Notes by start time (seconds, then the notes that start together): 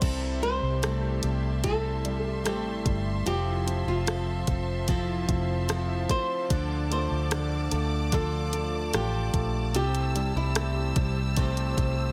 Already playing: C5
0.01 C2 C3 G3 C4 E4 G4 A4 E5 A5 C6, kick, closed hi-hat, crash
0.42 G3 C4 E4 C5, closed hi-hat
0.63 C2
0.82 G3 A3 C4 E4 A4, cross-stick, closed hi-hat
1.23 C2 G3 C4 E4 A4, closed hi-hat
1.63 C3 G3 C4 E4 A4, kick, closed hi-hat
2.05 G3, closed hi-hat
2.25 G4
2.44 A1 G3 A3 C4 E4 G4 A4, cross-stick, closed hi-hat
2.85 G1 G3, kick, closed hi-hat
3.26 F1 F3 C4 E4 G4 A4, closed hi-hat
3.66 C4 E4 A4, closed hi-hat
3.87 F1 F4
4.06 F3 C4 A4, cross-stick, closed hi-hat
4.47 F1 C4 A4, kick, closed hi-hat
4.88 F3 C4 E4 A4, kick, closed hi-hat
5.28 F1 C4, kick, closed hi-hat
5.68 F3 C4 E4 A4, cross-stick, closed hi-hat
6.09 C4 C5, kick, closed hi-hat
6.50 D2 D3 F3 D4 F4 A4 D5 D6, kick, closed hi-hat
6.90 A3 C5, closed hi-hat
7.11 D2
7.31 D3 F3 D4 F4 A4, cross-stick, closed hi-hat
7.71 D2 A3 D4 F4 A4, closed hi-hat
8.12 D3 F3 D4 F4 A4, kick, closed hi-hat
8.53 A3, closed hi-hat
8.93 A1 F3 D4 F4 G4 A4, cross-stick, closed hi-hat
9.34 A#1 A3, kick, closed hi-hat
9.74 C2 C3 A3 C4 E4 G4 C5 E6, closed hi-hat
9.95 closed hi-hat
10.15 G3 C4 E4 G4, closed hi-hat
10.36 C2 E4
10.55 C3 A3 C4 E4 G4, cross-stick, closed hi-hat
10.96 C2 G3 C4 E4 G4, kick, closed hi-hat
11.36 C3 A3 C4 E4 G4, kick, closed hi-hat
11.57 closed hi-hat
11.77 C2 G3, kick, closed hi-hat